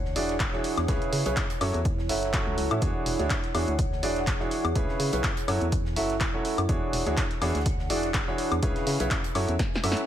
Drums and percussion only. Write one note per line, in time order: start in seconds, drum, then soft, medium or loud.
0.05 snare soft
0.16 open hi-hat loud
0.29 snare medium
0.29 closed hi-hat soft
0.40 kick loud
0.40 snare loud
0.40 clap loud
0.40 closed hi-hat medium
0.40 shaker loud
0.53 snare soft
0.64 open hi-hat loud
0.64 shaker medium
0.77 snare medium
0.77 closed hi-hat medium
0.77 high woodblock medium
0.88 kick loud
0.88 snare loud
0.88 closed hi-hat medium
0.88 shaker medium
1.02 snare soft
1.02 closed hi-hat soft
1.13 open hi-hat loud
1.13 shaker medium
1.26 closed hi-hat soft
1.26 closed hi-hat medium
1.36 kick loud
1.36 snare loud
1.36 clap loud
1.36 closed hi-hat medium
1.36 shaker medium
1.50 closed hi-hat soft
1.61 open hi-hat loud
1.61 high woodblock medium
1.61 shaker medium
1.74 closed hi-hat soft
1.85 kick loud
1.85 closed hi-hat medium
1.85 shaker medium
1.98 snare medium
2.09 snare soft
2.09 open hi-hat loud
2.23 snare medium
2.23 closed hi-hat soft
2.33 kick loud
2.33 snare loud
2.33 clap loud
2.33 closed hi-hat medium
2.33 shaker loud
2.57 open hi-hat loud
2.57 shaker medium
2.71 closed hi-hat soft
2.71 high woodblock medium
2.81 kick loud
2.81 closed hi-hat medium
2.81 shaker medium
3.06 open hi-hat loud
3.06 shaker medium
3.19 snare medium
3.19 closed hi-hat soft
3.30 kick loud
3.30 snare loud
3.30 clap loud
3.30 closed hi-hat medium
3.30 shaker medium
3.43 snare soft
3.43 closed hi-hat soft
3.55 open hi-hat medium
3.55 high woodblock medium
3.55 shaker medium
3.68 closed hi-hat soft
3.79 kick loud
3.79 closed hi-hat medium
3.79 shaker medium
3.92 snare soft
4.03 open hi-hat loud
4.03 shaker medium
4.16 snare medium
4.16 closed hi-hat soft
4.27 kick loud
4.27 snare loud
4.27 clap loud
4.27 closed hi-hat medium
4.27 shaker medium
4.40 snare soft
4.51 open hi-hat medium
4.51 shaker medium
4.65 closed hi-hat soft
4.65 high woodblock medium
4.75 kick loud
4.75 closed hi-hat medium
4.75 shaker medium
4.89 snare medium
5.00 open hi-hat loud
5.00 shaker medium
5.13 closed hi-hat soft
5.13 closed hi-hat medium
5.23 kick loud
5.23 snare loud
5.23 clap loud
5.23 closed hi-hat medium
5.23 shaker medium
5.37 closed hi-hat soft
5.48 open hi-hat medium
5.48 high woodblock medium
5.48 shaker medium
5.61 closed hi-hat soft
5.72 kick loud
5.72 closed hi-hat medium
5.72 shaker medium
5.85 snare medium
5.96 snare soft
5.96 open hi-hat loud
5.96 shaker medium
6.10 snare medium
6.10 closed hi-hat medium
6.20 kick loud
6.20 snare loud
6.20 clap loud
6.20 closed hi-hat medium
6.20 shaker medium
6.45 open hi-hat medium
6.45 shaker medium
6.58 closed hi-hat soft
6.58 high woodblock medium
6.69 kick loud
6.69 closed hi-hat medium
6.69 shaker loud
6.93 open hi-hat loud
6.93 shaker medium
7.06 snare medium
7.06 closed hi-hat medium
7.17 kick loud
7.17 snare loud
7.17 clap loud
7.17 closed hi-hat medium
7.17 shaker medium
7.31 snare soft
7.31 closed hi-hat soft
7.42 snare medium
7.42 open hi-hat medium
7.42 high woodblock medium
7.42 shaker medium
7.48 snare medium
7.48 shaker medium
7.55 snare medium
7.55 closed hi-hat medium
7.55 shaker medium
7.60 snare medium
7.60 shaker medium
7.66 kick loud
7.66 closed hi-hat medium
7.79 snare medium
7.90 open hi-hat loud
7.90 shaker medium
8.03 snare medium
8.03 closed hi-hat medium
8.14 kick loud
8.14 snare loud
8.14 clap loud
8.14 closed hi-hat medium
8.14 shaker medium
8.28 snare soft
8.38 open hi-hat medium
8.38 shaker medium
8.52 closed hi-hat medium
8.52 high woodblock medium
8.63 kick loud
8.63 closed hi-hat medium
8.63 shaker medium
8.76 snare medium
8.76 closed hi-hat soft
8.87 snare loud
8.87 open hi-hat loud
8.87 shaker medium
9.00 closed hi-hat soft
9.00 closed hi-hat medium
9.11 kick loud
9.11 snare loud
9.11 clap loud
9.11 closed hi-hat medium
9.11 shaker medium
9.24 closed hi-hat medium
9.24 closed hi-hat soft
9.35 open hi-hat loud
9.35 high woodblock medium
9.35 shaker medium
9.48 closed hi-hat medium
9.59 kick loud
9.59 snare medium
9.59 closed hi-hat medium
9.59 shaker medium
9.73 snare soft
9.76 snare medium
9.84 snare loud
9.84 open hi-hat loud
9.84 high woodblock medium
9.84 shaker medium
9.92 snare medium
9.97 snare soft
9.97 closed hi-hat medium